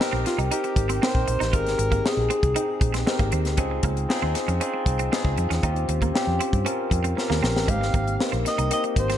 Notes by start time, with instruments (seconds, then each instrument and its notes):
0.00 tine electric piano C4 D#4 G4 A#4, snare
0.12 fingered electric bass A#1, clean electric guitar C4
0.26 alto saxophone F4, muted clean electric guitar stroke, snare, closed hi-hat
0.38 fingered electric bass C2, clean electric guitar D#4, closed hi-hat
0.51 tine electric piano C4 D#4 G4 A#4, clean electric guitar D#4, alto saxophone G4, closed hi-hat
0.64 muted clean electric guitar stroke, closed hi-hat
0.76 fingered electric bass G#1, kick, closed hi-hat
0.89 clean electric guitar C4, closed hi-hat
1.02 tine electric piano C4 D#4 G4 A#4, clean electric guitar C4, alto saxophone C5, snare
1.15 fingered electric bass A#1, kick
1.28 fingered electric bass A#1, muted clean electric guitar stroke, closed hi-hat
1.40 fingered electric bass A1, clean electric guitar D#4, snare, closed hi-hat
1.53 fingered electric bass G#1, tine electric piano C4 D#4 G4 G#4, clean electric guitar F4, alto saxophone A#4, kick, closed hi-hat
1.67 snare, closed hi-hat
1.79 fingered electric bass G#1, muted clean electric guitar stroke, closed hi-hat
1.92 clean electric guitar A#3, kick, closed hi-hat
2.04 tine electric piano C4 D#4 G#4 G5, alto saxophone G#4, snare
2.17 fingered electric bass A#1
2.30 clean electric guitar C4, closed hi-hat
2.43 fingered electric bass C2, kick, closed hi-hat
2.55 tine electric piano C4 D#4 G#4 G5, clean electric guitar D#4, closed hi-hat
2.81 fingered electric bass A#1, muted clean electric guitar stroke, kick, closed hi-hat
2.94 clean electric guitar C4, snare, closed hi-hat
3.07 tine electric piano C4 D#4 G4 A#4, muted clean electric guitar stroke, snare
3.19 fingered electric bass G#1, clean electric guitar A#3, kick, closed hi-hat
3.32 fingered electric bass D#2, clean electric guitar C4, closed hi-hat
3.45 fingered electric bass D2, snare, closed hi-hat
3.57 fingered electric bass C#2, tine electric piano C4 D#4 F4 G#4, clean electric guitar C#4, kick, closed hi-hat
3.71 muted clean electric guitar stroke
3.83 fingered electric bass C#2, clean electric guitar A#3, kick, closed hi-hat
3.97 closed hi-hat
4.09 tine electric piano C4 D#4 F4 G#4, snare
4.22 fingered electric bass D#2, clean electric guitar C4
4.35 muted clean electric guitar stroke, snare, closed hi-hat
4.48 fingered electric bass F2, clean electric guitar C#4, closed hi-hat
4.60 tine electric piano C4 D#4 F4 G#4, clean electric guitar C#4, closed hi-hat
4.74 muted clean electric guitar stroke
4.86 fingered electric bass C2, kick, closed hi-hat
4.99 clean electric guitar C4, closed hi-hat
5.11 tine electric piano C4 D#4 F4 G#4, clean electric guitar C4, snare
5.25 fingered electric bass C#2, kick
5.37 fingered electric bass F2, muted clean electric guitar stroke, closed hi-hat
5.50 fingered electric bass E2, clean electric guitar C#4, snare, closed hi-hat
5.62 fingered electric bass D#2, tine electric piano C4 C#4 F4 G4, clean electric guitar D#4, kick, closed hi-hat
5.76 closed hi-hat
5.89 fingered electric bass D#2, muted clean electric guitar stroke, closed hi-hat
6.02 clean electric guitar A#3, kick, closed hi-hat
6.14 tine electric piano C4 C#4 F4 G4, snare
6.27 fingered electric bass F2
6.40 clean electric guitar C4, closed hi-hat
6.53 fingered electric bass G2, kick, closed hi-hat
6.65 tine electric piano C4 C#4 F4 A#4, clean electric guitar C#4, closed hi-hat
6.91 fingered electric bass F2, muted clean electric guitar stroke, kick, closed hi-hat
7.04 clean electric guitar C4, closed hi-hat
7.17 tine electric piano C4 C#4 F4 G4, alto saxophone A#4, muted clean electric guitar stroke, snare
7.30 fingered electric bass D#2, clean electric guitar A#3, snare
7.42 fingered electric bass A#1, clean electric guitar C4, snare
7.56 fingered electric bass A1, snare
7.68 fingered electric bass G#1, clean electric guitar G#3, tine electric piano A#3 C4 D#4 G4, alto saxophone F5, kick, closed hi-hat
7.81 muted clean electric guitar stroke, snare
7.94 fingered electric bass G#1, clean electric guitar A#3, kick, closed hi-hat
8.08 closed hi-hat
8.19 tine electric piano A#3 C4 D#4 A#4, snare
8.32 fingered electric bass A#1, clean electric guitar C4, closed hi-hat
8.45 alto saxophone D#5, muted clean electric guitar stroke, snare, closed hi-hat
8.58 fingered electric bass C2, clean electric guitar D#4, closed hi-hat
8.70 tine electric piano A#3 C4 D#4 G4, clean electric guitar D#4, alto saxophone D#5, closed hi-hat
8.84 muted clean electric guitar stroke, closed hi-hat
8.96 fingered electric bass G#1, alto saxophone C5, kick, closed hi-hat
9.10 clean electric guitar C4, snare, closed hi-hat